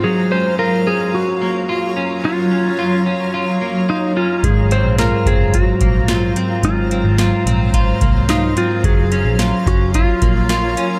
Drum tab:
HH |--------|--------|xxxxxxxx|xxxxxxxx|
SD |--------|--------|--o---o-|--o---o-|
BD |--------|--------|o--ooo--|----oo--|

HH |xxxxxxxx|
SD |--o---o-|
BD |o--ooo--|